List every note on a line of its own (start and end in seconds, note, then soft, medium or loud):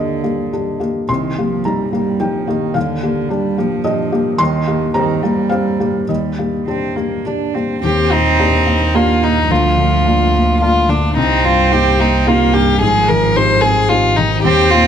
0.00 1.04 D#2 soft
0.00 0.88 D3 soft
0.00 0.24 A#3 soft
0.00 0.20 D4 soft
0.00 0.24 G4 soft
0.00 0.76 D#5 soft
0.00 1.11 F5 medium
0.24 0.49 A#3 soft
0.24 0.49 G4 soft
0.53 0.78 D4 soft
0.53 0.78 G4 soft
0.80 1.06 A#3 soft
0.80 1.06 G4 soft
1.09 2.71 C2 soft
1.09 1.39 D#3 soft
1.09 1.61 C6 medium
1.37 1.66 F3 soft
1.37 1.63 A#3 soft
1.37 1.63 G4 soft
1.64 1.92 G3 soft
1.64 1.90 D#4 soft
1.64 1.90 G4 soft
1.64 2.16 A#5 medium
1.92 2.21 G3 soft
1.92 2.17 A#3 soft
1.92 2.17 G4 soft
2.20 2.50 F3 soft
2.20 2.45 D#4 soft
2.20 2.45 G4 soft
2.20 2.71 G5 medium
2.47 2.77 D#3 soft
2.47 2.72 A#3 soft
2.47 2.73 G4 soft
2.74 4.36 D#2 soft
2.74 3.31 D3 soft
2.74 3.80 F5 medium
3.03 3.28 A#3 soft
3.03 3.27 G4 soft
3.29 3.59 G3 medium
3.29 3.55 D4 soft
3.29 3.55 G4 soft
3.58 4.38 F3 medium
3.58 3.82 A#3 soft
3.58 3.83 G4 soft
3.84 4.09 D4 soft
3.84 4.09 G4 soft
3.84 4.36 D#5 medium
4.12 4.37 A#3 soft
4.12 4.37 G4 soft
4.38 6.05 D#2 medium
4.38 4.94 D#3 medium
4.38 4.91 C6 medium
4.67 4.92 A#3 soft
4.67 4.92 G4 soft
4.94 5.24 D#3 medium
4.94 5.20 C4 soft
4.94 5.20 G4 soft
4.94 5.47 A#5 medium
5.23 6.08 G3 medium
5.23 5.48 A#3 soft
5.23 5.49 G4 soft
5.49 5.77 C4 soft
5.49 5.77 G4 soft
5.49 6.04 F5 medium
5.80 6.06 A#3 soft
5.80 6.06 G4 soft
6.09 7.79 D#2 soft
6.09 6.60 G3 soft
6.09 7.21 D#5 soft
6.39 6.65 A#3 soft
6.39 6.65 G4 soft
6.67 6.98 C4 soft
6.67 6.94 D4 soft
6.67 6.94 G4 soft
6.96 7.28 A#3 soft
6.96 7.23 A#3 soft
6.96 7.23 G4 soft
7.26 7.52 D4 soft
7.26 7.56 D4 soft
7.26 7.52 G4 soft
7.54 7.81 A#3 soft
7.54 7.83 C4 soft
7.54 7.81 G4 soft
7.83 9.46 D#2 soft
7.83 9.52 D#2 soft
7.83 8.96 C4 medium
7.83 8.13 G4 soft
8.11 8.56 A#2 soft
8.11 8.97 D#4 soft
8.39 8.64 A#3 soft
8.39 8.64 D4 soft
8.39 8.64 G4 soft
8.67 8.93 A#3 soft
8.94 9.19 A#3 soft
8.94 9.49 A#3 medium
8.94 9.19 D4 soft
8.94 9.25 F4 soft
8.94 9.19 G4 soft
9.22 9.50 A#2 soft
9.22 9.53 D#4 soft
9.50 11.18 D2 soft
9.50 11.13 D2 medium
9.50 10.86 F3 medium
9.50 10.60 F4 medium
9.78 10.22 D3 soft
10.05 10.31 A#3 soft
10.05 10.31 D4 soft
10.05 10.31 F4 soft
10.34 10.60 A#3 soft
10.61 10.86 A#3 soft
10.61 10.86 D4 soft
10.61 10.91 F4 medium
10.61 10.87 F4 soft
10.89 11.17 D3 soft
10.89 11.16 D4 soft
11.16 12.78 C2 medium
11.16 12.84 C2 medium
11.16 12.30 C4 medium
11.16 11.46 D#4 medium
11.44 11.88 G2 soft
11.44 11.74 F4 soft
11.71 11.96 A#3 soft
11.71 11.97 D#4 soft
11.71 11.97 G4 soft
11.71 12.01 G4 medium
11.99 12.25 A#3 soft
11.99 12.29 D#4 soft
12.26 12.51 A#3 soft
12.26 12.82 A#3 medium
12.26 12.52 D#4 soft
12.26 12.55 F4 medium
12.26 12.52 G4 soft
12.53 12.81 G2 soft
12.53 12.81 G4 medium
12.81 14.47 G#1 medium
12.81 14.41 G#2 medium
12.81 14.16 F3 medium
12.81 13.10 G#4 medium
13.08 13.52 D#3 soft
13.08 13.37 A#4 medium
13.36 13.60 C4 soft
13.36 13.61 D#4 soft
13.36 13.61 G4 soft
13.36 13.63 C5 medium
13.61 13.89 C4 soft
13.61 13.90 G#4 medium
13.89 14.15 C4 soft
13.89 14.15 D#4 soft
13.89 14.18 F4 medium
13.89 14.15 G4 soft
14.16 14.45 D#3 soft
14.16 14.43 D#4 medium
14.43 14.87 D#2 medium
14.43 14.87 C4 loud
14.43 14.72 G4 medium
14.70 14.87 A#2 medium
14.70 14.87 F4 medium